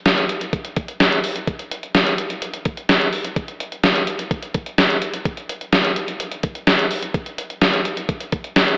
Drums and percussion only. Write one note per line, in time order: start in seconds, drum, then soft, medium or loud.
0.06 snare loud
0.06 closed hi-hat medium
0.18 closed hi-hat medium
0.29 closed hi-hat medium
0.41 closed hi-hat medium
0.53 kick loud
0.53 closed hi-hat medium
0.65 closed hi-hat medium
0.76 kick loud
0.76 closed hi-hat medium
0.88 closed hi-hat soft
1.00 snare loud
1.00 closed hi-hat medium
1.12 closed hi-hat medium
1.24 open hi-hat medium
1.36 closed hi-hat medium
1.47 kick loud
1.47 closed hi-hat medium
1.59 closed hi-hat soft
1.71 closed hi-hat medium
1.83 closed hi-hat soft
1.95 snare loud
1.95 closed hi-hat medium
2.07 closed hi-hat medium
2.18 closed hi-hat medium
2.30 closed hi-hat medium
2.42 closed hi-hat medium
2.54 closed hi-hat medium
2.65 kick medium
2.65 closed hi-hat medium
2.77 closed hi-hat soft
2.89 snare loud
2.89 closed hi-hat medium
3.01 closed hi-hat medium
3.13 open hi-hat medium
3.24 closed hi-hat medium
3.36 kick loud
3.36 closed hi-hat medium
3.48 closed hi-hat soft
3.60 closed hi-hat medium
3.72 closed hi-hat soft
3.83 snare loud
3.83 closed hi-hat medium
3.96 closed hi-hat medium
4.07 closed hi-hat medium
4.19 closed hi-hat medium
4.31 kick loud
4.31 closed hi-hat medium
4.43 closed hi-hat medium
4.54 kick medium
4.54 closed hi-hat medium
4.66 closed hi-hat soft
4.78 snare loud
4.78 closed hi-hat medium
4.90 closed hi-hat medium
5.02 closed hi-hat medium
5.14 closed hi-hat medium
5.25 kick loud
5.25 closed hi-hat medium
5.37 closed hi-hat soft
5.49 closed hi-hat medium
5.61 closed hi-hat soft
5.72 snare loud
5.72 closed hi-hat medium
5.85 closed hi-hat medium
5.96 closed hi-hat medium
6.08 closed hi-hat medium
6.20 closed hi-hat medium
6.32 closed hi-hat medium
6.43 kick loud
6.43 closed hi-hat medium
6.55 closed hi-hat soft
6.67 snare loud
6.67 closed hi-hat medium
6.79 closed hi-hat medium
6.91 open hi-hat medium
7.02 closed hi-hat medium
7.14 kick loud
7.14 closed hi-hat medium
7.26 closed hi-hat medium
7.38 closed hi-hat medium
7.50 closed hi-hat soft
7.61 snare loud
7.61 closed hi-hat medium
7.73 closed hi-hat medium
7.85 closed hi-hat medium
7.97 closed hi-hat medium
8.09 kick loud
8.09 closed hi-hat medium
8.20 closed hi-hat medium
8.32 kick medium
8.32 closed hi-hat medium
8.44 closed hi-hat soft
8.56 snare loud
8.56 closed hi-hat medium
8.68 closed hi-hat medium